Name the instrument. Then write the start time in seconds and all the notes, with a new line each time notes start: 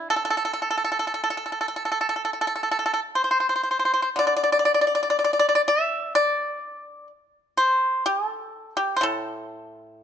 pipa
Already playing: D3 A3 D4
0.10 A4
0.16 A4
0.25 A4
0.30 A4
0.37 A4
0.45 A4
0.53 A4
0.62 A4
0.70 A4
0.77 A4
0.84 A4
0.92 A4
0.99 A4
1.07 A4
1.14 A4
1.24 A4
1.30 A4
1.37 A4
1.46 A4
1.52 A4
1.61 A4
1.68 A4
1.76 A4
1.85 A4
1.92 A4
2.01 A4
2.09 A4
2.16 A4
2.25 A4
2.33 A4
2.41 A4
2.47 A4
2.56 A4
2.63 A4
2.71 A4
2.79 A4
2.86 A4
2.94 A4
3.15 C5
3.24 C5
3.31 C5
3.40 C5
3.49 C5
3.56 C5
3.63 C5
3.71 C5
3.79 C5
3.85 C5
3.94 C5
4.02 C5
4.16 D3 D5
4.27 D5
4.37 D5
4.44 D5
4.52 D5
4.59 D5
4.65 D5
4.74 D5
4.81 D5
4.87 D5
4.95 D5
5.03 D5
5.10 D5
5.19 D5
5.24 D5
5.33 D5
5.39 D5
5.49 D5
5.55 D5
5.68 E5
6.15 D5
7.57 C5
8.06 G4
8.27 A4
8.77 G4
8.96 C5
9.01 A2 A4